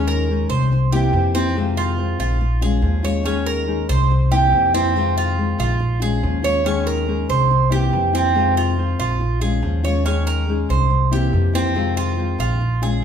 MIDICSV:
0, 0, Header, 1, 5, 480
1, 0, Start_track
1, 0, Key_signature, -4, "minor"
1, 0, Tempo, 424929
1, 1763, Time_signature, 4, 2, 24, 8
1, 14735, End_track
2, 0, Start_track
2, 0, Title_t, "Cuban tres"
2, 0, Program_c, 0, 25
2, 85, Note_on_c, 0, 70, 75
2, 550, Note_off_c, 0, 70, 0
2, 560, Note_on_c, 0, 72, 76
2, 1027, Note_off_c, 0, 72, 0
2, 1044, Note_on_c, 0, 67, 71
2, 1509, Note_off_c, 0, 67, 0
2, 1522, Note_on_c, 0, 60, 91
2, 1755, Note_off_c, 0, 60, 0
2, 2003, Note_on_c, 0, 65, 74
2, 2468, Note_off_c, 0, 65, 0
2, 2483, Note_on_c, 0, 65, 71
2, 2948, Note_off_c, 0, 65, 0
2, 2964, Note_on_c, 0, 68, 70
2, 3428, Note_off_c, 0, 68, 0
2, 3440, Note_on_c, 0, 73, 76
2, 3674, Note_off_c, 0, 73, 0
2, 3678, Note_on_c, 0, 61, 77
2, 3913, Note_off_c, 0, 61, 0
2, 3914, Note_on_c, 0, 70, 78
2, 4383, Note_off_c, 0, 70, 0
2, 4397, Note_on_c, 0, 72, 80
2, 4865, Note_off_c, 0, 72, 0
2, 4875, Note_on_c, 0, 67, 75
2, 5344, Note_off_c, 0, 67, 0
2, 5360, Note_on_c, 0, 60, 89
2, 5826, Note_off_c, 0, 60, 0
2, 5847, Note_on_c, 0, 65, 81
2, 6310, Note_off_c, 0, 65, 0
2, 6322, Note_on_c, 0, 65, 74
2, 6788, Note_off_c, 0, 65, 0
2, 6800, Note_on_c, 0, 68, 75
2, 7267, Note_off_c, 0, 68, 0
2, 7278, Note_on_c, 0, 73, 81
2, 7513, Note_off_c, 0, 73, 0
2, 7523, Note_on_c, 0, 61, 80
2, 7755, Note_off_c, 0, 61, 0
2, 7757, Note_on_c, 0, 70, 72
2, 8225, Note_off_c, 0, 70, 0
2, 8241, Note_on_c, 0, 72, 72
2, 8707, Note_off_c, 0, 72, 0
2, 8719, Note_on_c, 0, 67, 72
2, 9186, Note_off_c, 0, 67, 0
2, 9204, Note_on_c, 0, 60, 83
2, 9669, Note_off_c, 0, 60, 0
2, 9683, Note_on_c, 0, 65, 75
2, 10149, Note_off_c, 0, 65, 0
2, 10161, Note_on_c, 0, 65, 77
2, 10628, Note_off_c, 0, 65, 0
2, 10634, Note_on_c, 0, 68, 67
2, 11104, Note_off_c, 0, 68, 0
2, 11121, Note_on_c, 0, 73, 77
2, 11355, Note_off_c, 0, 73, 0
2, 11360, Note_on_c, 0, 61, 82
2, 11595, Note_off_c, 0, 61, 0
2, 11600, Note_on_c, 0, 70, 79
2, 12068, Note_off_c, 0, 70, 0
2, 12088, Note_on_c, 0, 72, 69
2, 12552, Note_off_c, 0, 72, 0
2, 12569, Note_on_c, 0, 67, 72
2, 13033, Note_off_c, 0, 67, 0
2, 13048, Note_on_c, 0, 60, 93
2, 13513, Note_off_c, 0, 60, 0
2, 13523, Note_on_c, 0, 65, 76
2, 13991, Note_off_c, 0, 65, 0
2, 14007, Note_on_c, 0, 65, 72
2, 14473, Note_off_c, 0, 65, 0
2, 14489, Note_on_c, 0, 68, 70
2, 14735, Note_off_c, 0, 68, 0
2, 14735, End_track
3, 0, Start_track
3, 0, Title_t, "Nylon-string guitar"
3, 0, Program_c, 1, 24
3, 0, Note_on_c, 1, 51, 73
3, 0, Note_on_c, 1, 56, 83
3, 0, Note_on_c, 1, 61, 82
3, 0, Note_on_c, 1, 63, 82
3, 0, Note_on_c, 1, 68, 86
3, 314, Note_off_c, 1, 51, 0
3, 317, Note_off_c, 1, 56, 0
3, 322, Note_off_c, 1, 61, 0
3, 324, Note_off_c, 1, 63, 0
3, 328, Note_off_c, 1, 68, 0
3, 329, Note_on_c, 1, 56, 54
3, 344, Note_on_c, 1, 61, 62
3, 345, Note_on_c, 1, 63, 64
3, 355, Note_on_c, 1, 68, 61
3, 797, Note_off_c, 1, 56, 0
3, 804, Note_off_c, 1, 61, 0
3, 805, Note_off_c, 1, 63, 0
3, 809, Note_off_c, 1, 68, 0
3, 1042, Note_on_c, 1, 64, 69
3, 1052, Note_on_c, 1, 60, 71
3, 1064, Note_on_c, 1, 58, 67
3, 1066, Note_on_c, 1, 52, 59
3, 1265, Note_off_c, 1, 52, 0
3, 1273, Note_off_c, 1, 64, 0
3, 1275, Note_off_c, 1, 58, 0
3, 1278, Note_off_c, 1, 60, 0
3, 1278, Note_on_c, 1, 52, 57
3, 1288, Note_on_c, 1, 58, 58
3, 1296, Note_on_c, 1, 60, 60
3, 1309, Note_on_c, 1, 64, 58
3, 1508, Note_off_c, 1, 64, 0
3, 1511, Note_off_c, 1, 52, 0
3, 1516, Note_off_c, 1, 58, 0
3, 1520, Note_off_c, 1, 60, 0
3, 1521, Note_on_c, 1, 64, 75
3, 1535, Note_on_c, 1, 60, 65
3, 1538, Note_on_c, 1, 58, 56
3, 1547, Note_on_c, 1, 52, 62
3, 1753, Note_off_c, 1, 64, 0
3, 1756, Note_on_c, 1, 48, 70
3, 1757, Note_off_c, 1, 52, 0
3, 1759, Note_off_c, 1, 60, 0
3, 1761, Note_off_c, 1, 58, 0
3, 1761, Note_on_c, 1, 51, 72
3, 1767, Note_on_c, 1, 56, 78
3, 1776, Note_on_c, 1, 60, 80
3, 1783, Note_on_c, 1, 65, 80
3, 2223, Note_off_c, 1, 51, 0
3, 2230, Note_off_c, 1, 48, 0
3, 2230, Note_off_c, 1, 56, 0
3, 2236, Note_off_c, 1, 60, 0
3, 2236, Note_on_c, 1, 51, 54
3, 2243, Note_off_c, 1, 65, 0
3, 2243, Note_on_c, 1, 56, 51
3, 2249, Note_on_c, 1, 60, 56
3, 2258, Note_on_c, 1, 65, 61
3, 2706, Note_off_c, 1, 56, 0
3, 2710, Note_off_c, 1, 51, 0
3, 2713, Note_off_c, 1, 65, 0
3, 2716, Note_off_c, 1, 60, 0
3, 2952, Note_on_c, 1, 65, 71
3, 2964, Note_on_c, 1, 61, 70
3, 2976, Note_on_c, 1, 56, 61
3, 3181, Note_off_c, 1, 56, 0
3, 3183, Note_on_c, 1, 53, 52
3, 3188, Note_off_c, 1, 65, 0
3, 3190, Note_off_c, 1, 61, 0
3, 3194, Note_on_c, 1, 56, 49
3, 3204, Note_on_c, 1, 61, 52
3, 3209, Note_on_c, 1, 65, 59
3, 3408, Note_off_c, 1, 65, 0
3, 3421, Note_on_c, 1, 65, 71
3, 3423, Note_off_c, 1, 53, 0
3, 3423, Note_off_c, 1, 61, 0
3, 3429, Note_off_c, 1, 56, 0
3, 3436, Note_on_c, 1, 61, 67
3, 3447, Note_on_c, 1, 56, 59
3, 3650, Note_off_c, 1, 56, 0
3, 3652, Note_on_c, 1, 51, 81
3, 3654, Note_off_c, 1, 61, 0
3, 3662, Note_off_c, 1, 65, 0
3, 3664, Note_on_c, 1, 56, 74
3, 3667, Note_on_c, 1, 61, 84
3, 3673, Note_on_c, 1, 63, 80
3, 3679, Note_on_c, 1, 68, 88
3, 4124, Note_off_c, 1, 56, 0
3, 4135, Note_off_c, 1, 61, 0
3, 4137, Note_off_c, 1, 51, 0
3, 4138, Note_on_c, 1, 56, 59
3, 4142, Note_off_c, 1, 63, 0
3, 4149, Note_on_c, 1, 61, 53
3, 4151, Note_off_c, 1, 68, 0
3, 4156, Note_on_c, 1, 63, 58
3, 4163, Note_on_c, 1, 68, 58
3, 4620, Note_off_c, 1, 56, 0
3, 4626, Note_off_c, 1, 61, 0
3, 4629, Note_off_c, 1, 63, 0
3, 4633, Note_off_c, 1, 68, 0
3, 4872, Note_on_c, 1, 64, 70
3, 4883, Note_on_c, 1, 60, 61
3, 4887, Note_on_c, 1, 58, 64
3, 4897, Note_on_c, 1, 52, 56
3, 5095, Note_off_c, 1, 52, 0
3, 5107, Note_off_c, 1, 64, 0
3, 5108, Note_on_c, 1, 52, 49
3, 5110, Note_off_c, 1, 58, 0
3, 5113, Note_off_c, 1, 60, 0
3, 5124, Note_on_c, 1, 58, 53
3, 5127, Note_on_c, 1, 60, 62
3, 5135, Note_on_c, 1, 64, 60
3, 5336, Note_off_c, 1, 64, 0
3, 5337, Note_off_c, 1, 60, 0
3, 5346, Note_off_c, 1, 52, 0
3, 5348, Note_off_c, 1, 58, 0
3, 5349, Note_on_c, 1, 64, 71
3, 5350, Note_on_c, 1, 60, 74
3, 5362, Note_on_c, 1, 58, 66
3, 5369, Note_on_c, 1, 52, 59
3, 5586, Note_off_c, 1, 64, 0
3, 5587, Note_off_c, 1, 60, 0
3, 5589, Note_on_c, 1, 48, 78
3, 5592, Note_off_c, 1, 58, 0
3, 5594, Note_off_c, 1, 52, 0
3, 5598, Note_on_c, 1, 51, 78
3, 5603, Note_on_c, 1, 56, 82
3, 5606, Note_on_c, 1, 60, 80
3, 5615, Note_on_c, 1, 65, 88
3, 6056, Note_off_c, 1, 51, 0
3, 6065, Note_off_c, 1, 56, 0
3, 6066, Note_off_c, 1, 48, 0
3, 6070, Note_on_c, 1, 51, 50
3, 6071, Note_off_c, 1, 60, 0
3, 6079, Note_off_c, 1, 65, 0
3, 6079, Note_on_c, 1, 56, 60
3, 6085, Note_on_c, 1, 60, 54
3, 6092, Note_on_c, 1, 65, 60
3, 6533, Note_off_c, 1, 56, 0
3, 6542, Note_off_c, 1, 65, 0
3, 6543, Note_off_c, 1, 51, 0
3, 6546, Note_off_c, 1, 60, 0
3, 6775, Note_on_c, 1, 65, 72
3, 6793, Note_on_c, 1, 61, 61
3, 6808, Note_on_c, 1, 56, 62
3, 7019, Note_off_c, 1, 65, 0
3, 7022, Note_off_c, 1, 56, 0
3, 7024, Note_on_c, 1, 53, 49
3, 7028, Note_off_c, 1, 61, 0
3, 7035, Note_on_c, 1, 56, 57
3, 7040, Note_on_c, 1, 61, 54
3, 7049, Note_on_c, 1, 65, 61
3, 7242, Note_off_c, 1, 65, 0
3, 7256, Note_on_c, 1, 65, 68
3, 7257, Note_off_c, 1, 61, 0
3, 7264, Note_off_c, 1, 53, 0
3, 7266, Note_off_c, 1, 56, 0
3, 7270, Note_on_c, 1, 61, 69
3, 7279, Note_on_c, 1, 56, 58
3, 7495, Note_off_c, 1, 56, 0
3, 7499, Note_off_c, 1, 61, 0
3, 7499, Note_off_c, 1, 65, 0
3, 7501, Note_on_c, 1, 51, 78
3, 7508, Note_on_c, 1, 56, 72
3, 7512, Note_on_c, 1, 61, 78
3, 7517, Note_on_c, 1, 63, 76
3, 7526, Note_on_c, 1, 68, 82
3, 7969, Note_off_c, 1, 56, 0
3, 7979, Note_off_c, 1, 61, 0
3, 7982, Note_off_c, 1, 51, 0
3, 7982, Note_on_c, 1, 56, 55
3, 7990, Note_off_c, 1, 63, 0
3, 7992, Note_off_c, 1, 68, 0
3, 7992, Note_on_c, 1, 61, 53
3, 8003, Note_on_c, 1, 63, 58
3, 8005, Note_on_c, 1, 68, 62
3, 8463, Note_off_c, 1, 56, 0
3, 8468, Note_off_c, 1, 61, 0
3, 8473, Note_off_c, 1, 63, 0
3, 8474, Note_off_c, 1, 68, 0
3, 8702, Note_on_c, 1, 64, 65
3, 8714, Note_on_c, 1, 60, 62
3, 8717, Note_on_c, 1, 58, 56
3, 8726, Note_on_c, 1, 52, 56
3, 8935, Note_off_c, 1, 52, 0
3, 8942, Note_off_c, 1, 64, 0
3, 8946, Note_off_c, 1, 58, 0
3, 8949, Note_off_c, 1, 60, 0
3, 8949, Note_on_c, 1, 52, 51
3, 8959, Note_on_c, 1, 58, 54
3, 8961, Note_on_c, 1, 60, 51
3, 8971, Note_on_c, 1, 64, 52
3, 9169, Note_off_c, 1, 64, 0
3, 9183, Note_on_c, 1, 64, 66
3, 9186, Note_off_c, 1, 52, 0
3, 9186, Note_off_c, 1, 60, 0
3, 9191, Note_off_c, 1, 58, 0
3, 9200, Note_on_c, 1, 60, 67
3, 9203, Note_on_c, 1, 58, 63
3, 9213, Note_on_c, 1, 52, 52
3, 9422, Note_off_c, 1, 52, 0
3, 9422, Note_on_c, 1, 48, 78
3, 9423, Note_off_c, 1, 64, 0
3, 9426, Note_off_c, 1, 60, 0
3, 9426, Note_on_c, 1, 51, 74
3, 9428, Note_off_c, 1, 58, 0
3, 9432, Note_on_c, 1, 56, 79
3, 9440, Note_on_c, 1, 60, 77
3, 9445, Note_on_c, 1, 65, 89
3, 9891, Note_off_c, 1, 51, 0
3, 9903, Note_off_c, 1, 48, 0
3, 9904, Note_off_c, 1, 56, 0
3, 9905, Note_on_c, 1, 51, 47
3, 9912, Note_off_c, 1, 60, 0
3, 9915, Note_off_c, 1, 65, 0
3, 9917, Note_on_c, 1, 56, 59
3, 9925, Note_on_c, 1, 60, 60
3, 9933, Note_on_c, 1, 65, 54
3, 10377, Note_off_c, 1, 56, 0
3, 10383, Note_off_c, 1, 51, 0
3, 10388, Note_off_c, 1, 65, 0
3, 10394, Note_off_c, 1, 60, 0
3, 10630, Note_on_c, 1, 65, 64
3, 10646, Note_on_c, 1, 61, 55
3, 10657, Note_on_c, 1, 56, 58
3, 10863, Note_off_c, 1, 56, 0
3, 10866, Note_on_c, 1, 53, 48
3, 10867, Note_off_c, 1, 65, 0
3, 10871, Note_off_c, 1, 61, 0
3, 10876, Note_on_c, 1, 56, 50
3, 10885, Note_on_c, 1, 61, 57
3, 10890, Note_on_c, 1, 65, 58
3, 11096, Note_off_c, 1, 65, 0
3, 11105, Note_off_c, 1, 53, 0
3, 11109, Note_on_c, 1, 65, 73
3, 11110, Note_off_c, 1, 56, 0
3, 11115, Note_off_c, 1, 61, 0
3, 11127, Note_on_c, 1, 61, 64
3, 11133, Note_on_c, 1, 56, 54
3, 11338, Note_off_c, 1, 56, 0
3, 11345, Note_off_c, 1, 61, 0
3, 11345, Note_on_c, 1, 51, 70
3, 11347, Note_off_c, 1, 65, 0
3, 11351, Note_on_c, 1, 56, 77
3, 11359, Note_on_c, 1, 61, 75
3, 11362, Note_on_c, 1, 63, 79
3, 11366, Note_on_c, 1, 68, 84
3, 11822, Note_off_c, 1, 56, 0
3, 11825, Note_off_c, 1, 51, 0
3, 11829, Note_off_c, 1, 61, 0
3, 11834, Note_off_c, 1, 63, 0
3, 11836, Note_off_c, 1, 68, 0
3, 11836, Note_on_c, 1, 56, 57
3, 11842, Note_on_c, 1, 61, 54
3, 11854, Note_on_c, 1, 63, 62
3, 11858, Note_on_c, 1, 68, 54
3, 12310, Note_off_c, 1, 56, 0
3, 12314, Note_off_c, 1, 61, 0
3, 12318, Note_off_c, 1, 68, 0
3, 12319, Note_off_c, 1, 63, 0
3, 12553, Note_on_c, 1, 64, 62
3, 12560, Note_on_c, 1, 60, 65
3, 12569, Note_on_c, 1, 58, 65
3, 12575, Note_on_c, 1, 52, 60
3, 12784, Note_off_c, 1, 52, 0
3, 12790, Note_off_c, 1, 64, 0
3, 12792, Note_off_c, 1, 58, 0
3, 12793, Note_off_c, 1, 60, 0
3, 12797, Note_on_c, 1, 52, 51
3, 12805, Note_on_c, 1, 58, 50
3, 12809, Note_on_c, 1, 60, 58
3, 12823, Note_on_c, 1, 64, 55
3, 13015, Note_off_c, 1, 64, 0
3, 13025, Note_off_c, 1, 60, 0
3, 13029, Note_on_c, 1, 64, 71
3, 13032, Note_off_c, 1, 52, 0
3, 13034, Note_off_c, 1, 58, 0
3, 13039, Note_on_c, 1, 60, 65
3, 13047, Note_on_c, 1, 58, 62
3, 13054, Note_on_c, 1, 52, 62
3, 13258, Note_on_c, 1, 48, 71
3, 13264, Note_off_c, 1, 52, 0
3, 13268, Note_off_c, 1, 64, 0
3, 13269, Note_on_c, 1, 51, 76
3, 13270, Note_off_c, 1, 60, 0
3, 13272, Note_off_c, 1, 58, 0
3, 13277, Note_on_c, 1, 56, 83
3, 13284, Note_on_c, 1, 60, 86
3, 13287, Note_on_c, 1, 65, 93
3, 13732, Note_off_c, 1, 51, 0
3, 13742, Note_off_c, 1, 56, 0
3, 13743, Note_off_c, 1, 48, 0
3, 13746, Note_on_c, 1, 51, 56
3, 13747, Note_off_c, 1, 60, 0
3, 13755, Note_on_c, 1, 56, 49
3, 13758, Note_off_c, 1, 65, 0
3, 13761, Note_on_c, 1, 60, 54
3, 13770, Note_on_c, 1, 65, 53
3, 14227, Note_off_c, 1, 51, 0
3, 14232, Note_off_c, 1, 56, 0
3, 14235, Note_off_c, 1, 60, 0
3, 14236, Note_off_c, 1, 65, 0
3, 14478, Note_on_c, 1, 65, 66
3, 14492, Note_on_c, 1, 61, 60
3, 14503, Note_on_c, 1, 56, 57
3, 14707, Note_off_c, 1, 56, 0
3, 14714, Note_off_c, 1, 65, 0
3, 14721, Note_off_c, 1, 61, 0
3, 14735, End_track
4, 0, Start_track
4, 0, Title_t, "Upright bass"
4, 0, Program_c, 2, 32
4, 0, Note_on_c, 2, 39, 106
4, 495, Note_off_c, 2, 39, 0
4, 555, Note_on_c, 2, 36, 91
4, 1234, Note_off_c, 2, 36, 0
4, 1276, Note_on_c, 2, 41, 94
4, 2410, Note_off_c, 2, 41, 0
4, 2476, Note_on_c, 2, 34, 84
4, 3154, Note_off_c, 2, 34, 0
4, 3187, Note_on_c, 2, 39, 96
4, 4325, Note_off_c, 2, 39, 0
4, 4397, Note_on_c, 2, 36, 97
4, 5074, Note_off_c, 2, 36, 0
4, 5106, Note_on_c, 2, 41, 97
4, 6245, Note_off_c, 2, 41, 0
4, 6309, Note_on_c, 2, 34, 93
4, 6990, Note_off_c, 2, 34, 0
4, 7038, Note_on_c, 2, 39, 97
4, 8171, Note_off_c, 2, 39, 0
4, 8240, Note_on_c, 2, 36, 92
4, 8916, Note_off_c, 2, 36, 0
4, 8956, Note_on_c, 2, 41, 96
4, 10091, Note_off_c, 2, 41, 0
4, 10156, Note_on_c, 2, 34, 90
4, 10834, Note_off_c, 2, 34, 0
4, 10872, Note_on_c, 2, 39, 94
4, 12009, Note_off_c, 2, 39, 0
4, 12078, Note_on_c, 2, 36, 88
4, 12757, Note_off_c, 2, 36, 0
4, 12799, Note_on_c, 2, 41, 90
4, 13935, Note_off_c, 2, 41, 0
4, 13991, Note_on_c, 2, 34, 90
4, 14675, Note_off_c, 2, 34, 0
4, 14735, End_track
5, 0, Start_track
5, 0, Title_t, "Muted nylon-string guitar strokes"
5, 808, Note_on_c, 9, 29, 60
5, 921, Note_off_c, 9, 29, 0
5, 2719, Note_on_c, 9, 29, 59
5, 2832, Note_off_c, 9, 29, 0
5, 4632, Note_on_c, 9, 29, 59
5, 4745, Note_off_c, 9, 29, 0
5, 6547, Note_on_c, 9, 29, 69
5, 6660, Note_off_c, 9, 29, 0
5, 8470, Note_on_c, 9, 29, 52
5, 8582, Note_off_c, 9, 29, 0
5, 10387, Note_on_c, 9, 29, 61
5, 10500, Note_off_c, 9, 29, 0
5, 12311, Note_on_c, 9, 29, 69
5, 12424, Note_off_c, 9, 29, 0
5, 14239, Note_on_c, 9, 29, 56
5, 14351, Note_off_c, 9, 29, 0
5, 14735, End_track
0, 0, End_of_file